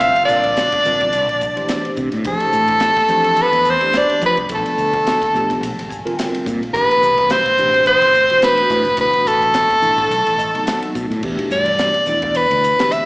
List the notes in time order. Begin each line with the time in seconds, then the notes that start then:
Already playing: F5
0.00 G1 D3 G3 C4 F4 A#4, kick, hi-hat pedal, ride
0.16 ride
0.25 D4 D5, hi-hat pedal
0.29 A#1
0.43 kick, ride
0.57 snare, hi-hat pedal, ride
0.72 muted fretless electric bass stroke, kick, ride
0.85 A#1 D3 G3 C4 F4 A#4, hi-hat pedal
1.01 kick, ride
1.12 C2, hi-hat pedal, ride
1.27 A#1, ride
1.41 kick, hi-hat pedal
1.56 E3 A3 D4 G4 C5, ride
1.69 snare, hi-hat pedal, ride
1.85 ride
1.96 C3, kick, hi-hat pedal
2.12 A2, snare, ride
2.24 F2 E3 A3 D4 G4 A4 C5, kick, hi-hat pedal, ride
2.40 ride
2.52 A2, hi-hat pedal
2.68 kick, ride
2.80 snare, hi-hat pedal, ride
2.96 muted fretless electric bass stroke, kick, ride
3.08 F2 E3 A3 D4 G4 C5, hi-hat pedal
3.24 ride
3.36 hi-hat pedal, ride
3.42 B3 B4
3.52 E2, snare, ride
3.65 hi-hat pedal
3.69 C4 C5
3.80 E3 A3 D4 G4 D5, ride
3.93 snare, hi-hat pedal, ride
3.97 D4 D5
4.09 ride
4.22 F3 B3, kick, hi-hat pedal
4.26 B4
4.37 C2, ride
4.49 B1 F3 A3 B3 D4 A4, kick, hi-hat pedal, ride
4.55 A4
4.66 ride
4.77 D2, hi-hat pedal
4.93 kick, ride
5.07 snare, hi-hat pedal, ride
5.22 kick, ride
5.33 B1 F3 A3 B3 D4 G4, hi-hat pedal
5.50 kick, snare, ride
5.61 A#1, hi-hat pedal, ride
5.76 G#1, snare, ride
5.90 G#5, kick, hi-hat pedal
6.05 D3 G3 C4 F4 A#4, ride
6.17 G5, snare, hi-hat pedal, ride
6.34 ride
6.46 A#2 F5, kick, snare, hi-hat pedal
6.61 A#1, ride
6.72 A1 B2 E3 A3 B3 D4 G4 B4, kick, hi-hat pedal, ride
6.91 ride
7.02 C2, hi-hat pedal
7.18 kick, snare, ride
7.30 C4 C5, snare, hi-hat pedal, ride
7.46 muted fretless electric bass stroke, kick, ride
7.57 A1 B2 E3 A3 D4 G4, hi-hat pedal
7.74 snare, ride
7.86 C4 C5, hi-hat pedal, ride
8.01 G1, ride
8.14 hi-hat pedal
8.30 B2 E3 A3 D4 F#4, ride
8.42 B3 B4, snare, hi-hat pedal, ride
8.57 ride
8.70 A2, kick, snare, hi-hat pedal
8.85 G1, snare, ride
8.97 F#1 B2 E3 A3 D4 F#4 B4, kick, hi-hat pedal, ride
9.01 B3
9.13 ride
9.25 A1 A3 A4, hi-hat pedal
9.42 kick, ride
9.54 snare, hi-hat pedal, ride
9.70 kick, ride
9.82 A1 B2 E3 A3 D4 E4, hi-hat pedal
9.98 kick, ride
10.10 B1, hi-hat pedal, ride
10.26 A1, snare, ride
10.38 D#5, kick, hi-hat pedal
10.54 C3 F#3 A3 B3 D#4, ride
10.66 F#5, snare, hi-hat pedal, ride
10.82 ride
10.95 B2, kick, hi-hat pedal
11.04 A5
11.10 A2, snare, ride
11.23 E2 B2 E3 A3 D4 G4, kick, crash
11.39 ride
11.50 G2 D5, snare, hi-hat pedal
11.66 ride
11.79 snare, hi-hat pedal, ride
11.94 muted fretless electric bass stroke, ride
12.06 E2 B2 E3 A3 D4 E4, snare, hi-hat pedal
12.22 kick, ride
12.35 B4, hi-hat pedal, ride
12.51 D2, ride
12.64 hi-hat pedal
12.79 B2 E3 A3 D4 G4, snare, ride
12.92 E5, hi-hat pedal, ride